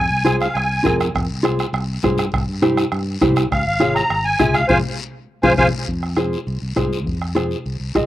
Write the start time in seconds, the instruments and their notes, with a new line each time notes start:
Already playing: accordion G#5
0.11 fingered electric bass C2
0.25 clean electric guitar F4 G#4 C5, bombo rim, high conga, short guiro
0.41 accordion F5, bombo rim, short guiro
0.54 fingered electric bass C2, accordion G#5, bombo rim, high conga, long guiro
0.84 fingered electric bass F2, clean electric guitar F4 G#4 A#4, bombo low, bombo rim, high conga, low conga, short guiro
1.00 bombo rim, short guiro
1.15 fingered electric bass F2, bombo low, bombo rim, high conga, long guiro
1.29 fingered electric bass C2
1.43 clean electric guitar F4 G#4 C5, bombo rim, high conga, short guiro
1.59 bombo rim, short guiro
1.73 fingered electric bass C2, bombo rim, high conga, long guiro
2.03 fingered electric bass G2, clean electric guitar F4 G#4 C5, bombo low, bombo rim, high conga, short guiro
2.18 bombo rim, short guiro
2.32 fingered electric bass C2, bombo low, bombo rim, high conga, long guiro
2.48 fingered electric bass G2
2.62 clean electric guitar E4 G4 C5, bombo rim, high conga, short guiro
2.77 bombo rim, short guiro
2.92 fingered electric bass G2, bombo rim, high conga, long guiro
3.21 fingered electric bass C2, clean electric guitar E4 G4 C5, bombo low, bombo rim, high conga, low conga, short guiro
3.36 bombo rim, short guiro
3.52 fingered electric bass C#2, accordion F5, bombo low, bombo rim, high conga, long guiro
3.66 fingered electric bass G#1, accordion F5
3.80 clean electric guitar F4 G#4 C#5, bombo rim, high conga, short guiro
3.95 accordion A#5, bombo rim, short guiro
4.10 fingered electric bass G#1, bombo rim, high conga, long guiro
4.25 accordion G#5
4.39 fingered electric bass C#2, clean electric guitar F4 G#4 E5, bombo low, bombo rim, high conga, short guiro
4.54 accordion F5, bombo rim, short guiro
4.68 fingered electric bass F2, clean electric guitar F4 G#4 C5, accordion C5 F5 G#5, bombo low, high conga, long guiro
5.43 fingered electric bass F2, clean electric guitar F4 G#4 C5, accordion C5 F5 G#5, bombo low, high conga, long guiro
5.57 fingered electric bass F2, clean electric guitar F4 G#4 C5, accordion C5 F5 G#5, bombo low, high conga, long guiro
5.87 fingered electric bass F2, bombo low, high conga, long guiro
6.03 bombo rim
6.17 clean electric guitar F4 G#4 C5, bombo rim, high conga, short guiro
6.33 short guiro
6.46 fingered electric bass C2, high conga, long guiro
6.62 fingered electric bass C2
6.76 fingered electric bass C2, clean electric guitar F4 G#4 C5, bombo low, bombo rim, high conga, short guiro
6.93 short guiro
7.06 fingered electric bass F2, bombo low, high conga, long guiro
7.22 bombo rim
7.35 clean electric guitar F4 G#4 C5, bombo rim, high conga, short guiro
7.51 short guiro
7.66 fingered electric bass C2, high conga, long guiro
7.80 fingered electric bass C2
7.95 fingered electric bass C2, clean electric guitar F4 G#4 D#5, bombo low, bombo rim, high conga, short guiro